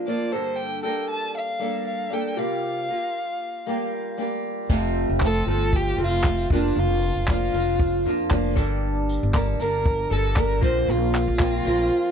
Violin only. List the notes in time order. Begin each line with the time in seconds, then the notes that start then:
0.07 D5
0.32 C5
0.56 G5
0.83 G5
1.09 A5
1.36 F5
1.87 F5
2.13 G5
2.38 F5
5.25 A4
5.50 A4
5.76 G4
6.04 F4
6.53 D4
6.79 F4
7.30 F4
9.35 A#4
9.60 A#4
10.13 A4
10.39 A#4
10.64 C5
10.91 F4